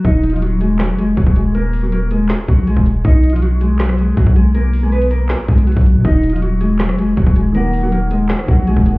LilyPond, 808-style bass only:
\new Staff \with { instrumentName = "808-style bass" } { \clef bass \time 4/4 \key ees \minor \tempo 4 = 160 ees,,2~ ees,,16 f,,8. ees,,16 ees,,8.~ | ees,,2~ ees,,16 r16 bes,,8. ees,,8. | b,,2. b,,16 b,,8.~ | b,,2~ b,,16 r16 b,,8. b,,8 b,16 |
ees,,2~ ees,,16 f,,8. ees,,16 ees,,8.~ | ees,,2~ ees,,16 r16 bes,,8. ees,,8. | }